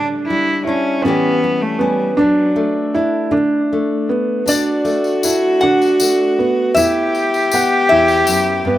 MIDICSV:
0, 0, Header, 1, 6, 480
1, 0, Start_track
1, 0, Key_signature, 2, "major"
1, 0, Tempo, 763359
1, 1374, Time_signature, 6, 3, 24, 8
1, 5523, End_track
2, 0, Start_track
2, 0, Title_t, "Resonator guitar played with a steel bar"
2, 0, Program_c, 0, 25
2, 2822, Note_on_c, 0, 74, 94
2, 3272, Note_off_c, 0, 74, 0
2, 3526, Note_on_c, 0, 78, 94
2, 4238, Note_off_c, 0, 78, 0
2, 4241, Note_on_c, 0, 76, 92
2, 4941, Note_off_c, 0, 76, 0
2, 4961, Note_on_c, 0, 76, 91
2, 5481, Note_off_c, 0, 76, 0
2, 5523, End_track
3, 0, Start_track
3, 0, Title_t, "Felt piano"
3, 0, Program_c, 1, 0
3, 0, Note_on_c, 1, 62, 80
3, 395, Note_off_c, 1, 62, 0
3, 405, Note_on_c, 1, 64, 58
3, 642, Note_on_c, 1, 61, 83
3, 645, Note_off_c, 1, 64, 0
3, 1118, Note_off_c, 1, 61, 0
3, 1125, Note_on_c, 1, 59, 74
3, 1364, Note_off_c, 1, 59, 0
3, 1364, Note_on_c, 1, 62, 87
3, 1839, Note_off_c, 1, 62, 0
3, 1851, Note_on_c, 1, 64, 76
3, 2086, Note_on_c, 1, 62, 80
3, 2088, Note_off_c, 1, 64, 0
3, 2560, Note_off_c, 1, 62, 0
3, 2574, Note_on_c, 1, 59, 73
3, 2809, Note_off_c, 1, 59, 0
3, 2817, Note_on_c, 1, 62, 82
3, 3285, Note_off_c, 1, 62, 0
3, 3294, Note_on_c, 1, 64, 60
3, 3529, Note_off_c, 1, 64, 0
3, 3538, Note_on_c, 1, 62, 74
3, 4005, Note_off_c, 1, 62, 0
3, 4016, Note_on_c, 1, 59, 73
3, 4249, Note_off_c, 1, 59, 0
3, 4259, Note_on_c, 1, 64, 83
3, 4726, Note_off_c, 1, 64, 0
3, 4742, Note_on_c, 1, 78, 73
3, 4972, Note_off_c, 1, 78, 0
3, 4975, Note_on_c, 1, 64, 81
3, 5443, Note_off_c, 1, 64, 0
3, 5452, Note_on_c, 1, 59, 78
3, 5523, Note_off_c, 1, 59, 0
3, 5523, End_track
4, 0, Start_track
4, 0, Title_t, "Cello"
4, 0, Program_c, 2, 42
4, 169, Note_on_c, 2, 64, 89
4, 394, Note_off_c, 2, 64, 0
4, 417, Note_on_c, 2, 61, 86
4, 645, Note_on_c, 2, 59, 96
4, 654, Note_off_c, 2, 61, 0
4, 1020, Note_on_c, 2, 57, 85
4, 1030, Note_off_c, 2, 59, 0
4, 1129, Note_on_c, 2, 55, 83
4, 1138, Note_off_c, 2, 57, 0
4, 1371, Note_off_c, 2, 55, 0
4, 1377, Note_on_c, 2, 54, 75
4, 1830, Note_off_c, 2, 54, 0
4, 2808, Note_on_c, 2, 66, 90
4, 4241, Note_on_c, 2, 67, 112
4, 4250, Note_off_c, 2, 66, 0
4, 5523, Note_off_c, 2, 67, 0
4, 5523, End_track
5, 0, Start_track
5, 0, Title_t, "Nylon-string guitar"
5, 0, Program_c, 3, 24
5, 0, Note_on_c, 3, 45, 67
5, 0, Note_on_c, 3, 55, 45
5, 0, Note_on_c, 3, 62, 55
5, 172, Note_off_c, 3, 55, 0
5, 190, Note_on_c, 3, 55, 58
5, 371, Note_off_c, 3, 45, 0
5, 416, Note_off_c, 3, 62, 0
5, 423, Note_on_c, 3, 62, 53
5, 630, Note_off_c, 3, 62, 0
5, 657, Note_off_c, 3, 55, 0
5, 660, Note_on_c, 3, 45, 72
5, 665, Note_on_c, 3, 52, 61
5, 665, Note_on_c, 3, 55, 56
5, 672, Note_on_c, 3, 61, 59
5, 676, Note_on_c, 3, 67, 67
5, 895, Note_off_c, 3, 55, 0
5, 903, Note_on_c, 3, 55, 52
5, 1089, Note_off_c, 3, 45, 0
5, 1129, Note_off_c, 3, 61, 0
5, 1137, Note_on_c, 3, 61, 61
5, 1347, Note_off_c, 3, 61, 0
5, 1351, Note_off_c, 3, 52, 0
5, 1357, Note_off_c, 3, 67, 0
5, 1370, Note_on_c, 3, 38, 69
5, 1377, Note_on_c, 3, 62, 60
5, 1379, Note_off_c, 3, 55, 0
5, 1609, Note_on_c, 3, 57, 55
5, 1804, Note_off_c, 3, 38, 0
5, 1851, Note_off_c, 3, 62, 0
5, 1859, Note_on_c, 3, 62, 53
5, 2082, Note_on_c, 3, 50, 70
5, 2331, Note_off_c, 3, 57, 0
5, 2343, Note_on_c, 3, 57, 47
5, 2520, Note_off_c, 3, 50, 0
5, 2787, Note_off_c, 3, 62, 0
5, 2789, Note_off_c, 3, 57, 0
5, 2802, Note_on_c, 3, 38, 73
5, 2806, Note_on_c, 3, 62, 55
5, 3047, Note_on_c, 3, 57, 61
5, 3240, Note_off_c, 3, 38, 0
5, 3289, Note_off_c, 3, 62, 0
5, 3300, Note_on_c, 3, 62, 57
5, 3539, Note_on_c, 3, 50, 63
5, 3770, Note_off_c, 3, 57, 0
5, 3778, Note_on_c, 3, 57, 49
5, 3968, Note_off_c, 3, 50, 0
5, 4226, Note_off_c, 3, 57, 0
5, 4227, Note_off_c, 3, 62, 0
5, 4249, Note_on_c, 3, 40, 78
5, 4250, Note_on_c, 3, 59, 61
5, 4683, Note_off_c, 3, 40, 0
5, 4730, Note_off_c, 3, 59, 0
5, 4738, Note_on_c, 3, 59, 60
5, 4966, Note_on_c, 3, 40, 59
5, 5200, Note_off_c, 3, 40, 0
5, 5203, Note_on_c, 3, 42, 54
5, 5435, Note_off_c, 3, 42, 0
5, 5438, Note_on_c, 3, 43, 69
5, 5523, Note_off_c, 3, 43, 0
5, 5523, Note_off_c, 3, 59, 0
5, 5523, End_track
6, 0, Start_track
6, 0, Title_t, "Drums"
6, 2814, Note_on_c, 9, 54, 97
6, 2877, Note_off_c, 9, 54, 0
6, 3050, Note_on_c, 9, 54, 29
6, 3113, Note_off_c, 9, 54, 0
6, 3170, Note_on_c, 9, 54, 27
6, 3232, Note_off_c, 9, 54, 0
6, 3290, Note_on_c, 9, 54, 94
6, 3353, Note_off_c, 9, 54, 0
6, 3657, Note_on_c, 9, 54, 30
6, 3720, Note_off_c, 9, 54, 0
6, 3770, Note_on_c, 9, 54, 89
6, 3833, Note_off_c, 9, 54, 0
6, 4254, Note_on_c, 9, 54, 85
6, 4317, Note_off_c, 9, 54, 0
6, 4493, Note_on_c, 9, 54, 29
6, 4556, Note_off_c, 9, 54, 0
6, 4615, Note_on_c, 9, 54, 28
6, 4678, Note_off_c, 9, 54, 0
6, 4725, Note_on_c, 9, 54, 79
6, 4788, Note_off_c, 9, 54, 0
6, 5081, Note_on_c, 9, 54, 27
6, 5144, Note_off_c, 9, 54, 0
6, 5199, Note_on_c, 9, 54, 78
6, 5261, Note_off_c, 9, 54, 0
6, 5523, End_track
0, 0, End_of_file